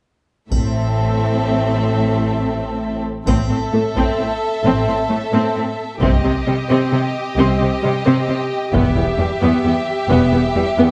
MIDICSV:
0, 0, Header, 1, 8, 480
1, 0, Start_track
1, 0, Key_signature, 0, "minor"
1, 0, Tempo, 456274
1, 547, Time_signature, 3, 2, 24, 8
1, 11477, End_track
2, 0, Start_track
2, 0, Title_t, "Violin section"
2, 0, Program_c, 0, 48
2, 537, Note_on_c, 0, 76, 35
2, 3181, Note_off_c, 0, 76, 0
2, 3456, Note_on_c, 0, 76, 41
2, 6292, Note_off_c, 0, 76, 0
2, 6344, Note_on_c, 0, 75, 47
2, 9163, Note_off_c, 0, 75, 0
2, 9211, Note_on_c, 0, 76, 59
2, 11477, Note_off_c, 0, 76, 0
2, 11477, End_track
3, 0, Start_track
3, 0, Title_t, "Violin section"
3, 0, Program_c, 1, 48
3, 541, Note_on_c, 1, 69, 33
3, 3183, Note_off_c, 1, 69, 0
3, 3434, Note_on_c, 1, 69, 39
3, 6281, Note_off_c, 1, 69, 0
3, 6331, Note_on_c, 1, 67, 42
3, 9157, Note_off_c, 1, 67, 0
3, 9188, Note_on_c, 1, 67, 49
3, 11477, Note_off_c, 1, 67, 0
3, 11477, End_track
4, 0, Start_track
4, 0, Title_t, "Viola section"
4, 0, Program_c, 2, 48
4, 549, Note_on_c, 2, 60, 35
4, 3187, Note_off_c, 2, 60, 0
4, 3442, Note_on_c, 2, 60, 46
4, 3666, Note_off_c, 2, 60, 0
4, 3681, Note_on_c, 2, 60, 34
4, 3766, Note_off_c, 2, 60, 0
4, 3923, Note_on_c, 2, 57, 34
4, 4007, Note_off_c, 2, 57, 0
4, 4176, Note_on_c, 2, 60, 48
4, 4394, Note_off_c, 2, 60, 0
4, 4421, Note_on_c, 2, 60, 31
4, 4505, Note_off_c, 2, 60, 0
4, 4895, Note_on_c, 2, 60, 47
4, 5115, Note_off_c, 2, 60, 0
4, 5134, Note_on_c, 2, 60, 35
4, 5218, Note_off_c, 2, 60, 0
4, 5368, Note_on_c, 2, 57, 36
4, 5452, Note_off_c, 2, 57, 0
4, 5614, Note_on_c, 2, 60, 47
4, 5834, Note_off_c, 2, 60, 0
4, 5849, Note_on_c, 2, 60, 35
4, 5934, Note_off_c, 2, 60, 0
4, 6322, Note_on_c, 2, 60, 51
4, 6547, Note_off_c, 2, 60, 0
4, 6570, Note_on_c, 2, 60, 40
4, 6655, Note_off_c, 2, 60, 0
4, 6808, Note_on_c, 2, 55, 36
4, 6892, Note_off_c, 2, 55, 0
4, 7044, Note_on_c, 2, 60, 52
4, 7267, Note_off_c, 2, 60, 0
4, 7286, Note_on_c, 2, 60, 39
4, 7370, Note_off_c, 2, 60, 0
4, 7762, Note_on_c, 2, 60, 57
4, 7981, Note_off_c, 2, 60, 0
4, 7993, Note_on_c, 2, 60, 39
4, 8077, Note_off_c, 2, 60, 0
4, 8226, Note_on_c, 2, 55, 40
4, 8310, Note_off_c, 2, 55, 0
4, 8466, Note_on_c, 2, 60, 50
4, 8692, Note_off_c, 2, 60, 0
4, 8705, Note_on_c, 2, 60, 47
4, 8789, Note_off_c, 2, 60, 0
4, 9190, Note_on_c, 2, 59, 57
4, 9414, Note_off_c, 2, 59, 0
4, 9433, Note_on_c, 2, 59, 40
4, 9517, Note_off_c, 2, 59, 0
4, 9678, Note_on_c, 2, 55, 37
4, 9762, Note_off_c, 2, 55, 0
4, 9903, Note_on_c, 2, 59, 51
4, 10127, Note_off_c, 2, 59, 0
4, 10150, Note_on_c, 2, 59, 44
4, 10234, Note_off_c, 2, 59, 0
4, 10624, Note_on_c, 2, 59, 61
4, 10847, Note_off_c, 2, 59, 0
4, 10867, Note_on_c, 2, 59, 40
4, 10951, Note_off_c, 2, 59, 0
4, 11108, Note_on_c, 2, 55, 37
4, 11193, Note_off_c, 2, 55, 0
4, 11344, Note_on_c, 2, 59, 51
4, 11477, Note_off_c, 2, 59, 0
4, 11477, End_track
5, 0, Start_track
5, 0, Title_t, "Cello section"
5, 0, Program_c, 3, 48
5, 529, Note_on_c, 3, 45, 32
5, 3177, Note_off_c, 3, 45, 0
5, 3448, Note_on_c, 3, 45, 50
5, 3532, Note_off_c, 3, 45, 0
5, 3682, Note_on_c, 3, 45, 32
5, 3766, Note_off_c, 3, 45, 0
5, 3924, Note_on_c, 3, 45, 36
5, 4008, Note_off_c, 3, 45, 0
5, 4151, Note_on_c, 3, 45, 41
5, 4235, Note_off_c, 3, 45, 0
5, 4405, Note_on_c, 3, 45, 33
5, 4489, Note_off_c, 3, 45, 0
5, 4887, Note_on_c, 3, 45, 52
5, 4972, Note_off_c, 3, 45, 0
5, 5132, Note_on_c, 3, 45, 31
5, 5216, Note_off_c, 3, 45, 0
5, 5361, Note_on_c, 3, 45, 37
5, 5445, Note_off_c, 3, 45, 0
5, 5603, Note_on_c, 3, 45, 51
5, 5687, Note_off_c, 3, 45, 0
5, 5847, Note_on_c, 3, 45, 36
5, 5931, Note_off_c, 3, 45, 0
5, 6332, Note_on_c, 3, 48, 48
5, 6416, Note_off_c, 3, 48, 0
5, 6562, Note_on_c, 3, 48, 35
5, 6646, Note_off_c, 3, 48, 0
5, 6809, Note_on_c, 3, 48, 39
5, 6894, Note_off_c, 3, 48, 0
5, 7042, Note_on_c, 3, 48, 49
5, 7126, Note_off_c, 3, 48, 0
5, 7286, Note_on_c, 3, 48, 41
5, 7370, Note_off_c, 3, 48, 0
5, 7765, Note_on_c, 3, 48, 55
5, 7849, Note_off_c, 3, 48, 0
5, 8018, Note_on_c, 3, 48, 39
5, 8102, Note_off_c, 3, 48, 0
5, 8245, Note_on_c, 3, 48, 40
5, 8329, Note_off_c, 3, 48, 0
5, 8486, Note_on_c, 3, 48, 55
5, 8570, Note_off_c, 3, 48, 0
5, 8723, Note_on_c, 3, 48, 40
5, 8807, Note_off_c, 3, 48, 0
5, 9191, Note_on_c, 3, 40, 57
5, 9276, Note_off_c, 3, 40, 0
5, 9430, Note_on_c, 3, 40, 41
5, 9514, Note_off_c, 3, 40, 0
5, 9668, Note_on_c, 3, 40, 45
5, 9753, Note_off_c, 3, 40, 0
5, 9910, Note_on_c, 3, 40, 53
5, 9994, Note_off_c, 3, 40, 0
5, 10140, Note_on_c, 3, 40, 39
5, 10224, Note_off_c, 3, 40, 0
5, 10618, Note_on_c, 3, 40, 52
5, 10702, Note_off_c, 3, 40, 0
5, 10862, Note_on_c, 3, 40, 39
5, 10946, Note_off_c, 3, 40, 0
5, 11104, Note_on_c, 3, 40, 41
5, 11188, Note_off_c, 3, 40, 0
5, 11344, Note_on_c, 3, 40, 51
5, 11428, Note_off_c, 3, 40, 0
5, 11477, End_track
6, 0, Start_track
6, 0, Title_t, "Double bass section"
6, 0, Program_c, 4, 48
6, 538, Note_on_c, 4, 33, 33
6, 3181, Note_off_c, 4, 33, 0
6, 3443, Note_on_c, 4, 33, 47
6, 3667, Note_off_c, 4, 33, 0
6, 4897, Note_on_c, 4, 33, 49
6, 5116, Note_off_c, 4, 33, 0
6, 6329, Note_on_c, 4, 36, 50
6, 6550, Note_off_c, 4, 36, 0
6, 7771, Note_on_c, 4, 36, 56
6, 7990, Note_off_c, 4, 36, 0
6, 9194, Note_on_c, 4, 28, 56
6, 9417, Note_off_c, 4, 28, 0
6, 10626, Note_on_c, 4, 28, 54
6, 10848, Note_off_c, 4, 28, 0
6, 11477, End_track
7, 0, Start_track
7, 0, Title_t, "Taiko and cinematic ensemble drums"
7, 543, Note_on_c, 9, 41, 35
7, 648, Note_off_c, 9, 41, 0
7, 3448, Note_on_c, 9, 41, 48
7, 3553, Note_off_c, 9, 41, 0
7, 4169, Note_on_c, 9, 41, 31
7, 4275, Note_off_c, 9, 41, 0
7, 6332, Note_on_c, 9, 41, 50
7, 6437, Note_off_c, 9, 41, 0
7, 9202, Note_on_c, 9, 41, 50
7, 9308, Note_off_c, 9, 41, 0
7, 11477, End_track
8, 0, Start_track
8, 0, Title_t, "Drums"
8, 544, Note_on_c, 9, 81, 24
8, 649, Note_off_c, 9, 81, 0
8, 3442, Note_on_c, 9, 81, 28
8, 3547, Note_off_c, 9, 81, 0
8, 11477, End_track
0, 0, End_of_file